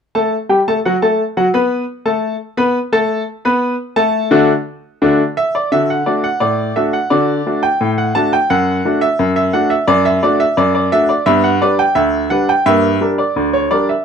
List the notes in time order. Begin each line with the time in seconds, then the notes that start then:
0.15 A3 A4 A5
0.49 G3 G4 G5
0.68 A3 A4 A5
0.85 F#3 F#4 F#5
1.02 A3 A4 A5
1.37 F#3 F#4 F#5
1.54 B3 B4 B5
2.06 A3 A4 A5
2.57 B3 B4 B5
2.92 A3 A4 A5
3.45 B3 B4 B5
3.96 A3 A4 A5
4.31 D3 A3 D4 F#4
5.02 D3 A3 D4 F#4
5.37 E5
5.55 D5
5.72 D3 F#4 E5
5.90 F#5
6.06 A3 D4 F#4 D5
6.24 F#5
6.40 A2 D5
6.76 A3 D4 F#4 E5
6.93 F#5
7.10 D3 F#4 D5
7.46 A3 D4 F#4
7.63 G5
7.81 A2
7.98 F#5
8.15 A3 D4 F#4 A5
8.33 G5
8.50 F#2 F#5
8.85 A3 D4 F#4
9.01 E5
9.19 F#2
9.36 E5
9.53 A3 D4 F#4 F#5
9.70 E5
9.88 F#2 D5
10.05 E5
10.23 A3 D4 F#4 D5
10.40 E5
10.57 F#2 D5
10.75 D5
10.92 A3 D4 F#4 E5
11.09 D5
11.26 G2 B3 E5
11.44 F#5
11.62 G3 D4 B4 D5
11.79 G5
11.95 D2 E5
12.30 G3 D4 B4 F#5
12.49 G5
12.66 G2 A#3 E5
13.01 G3 D4 A#4
13.18 D5
13.36 D2
13.53 C#5
13.71 G3 D4 A#4 D5
13.89 E5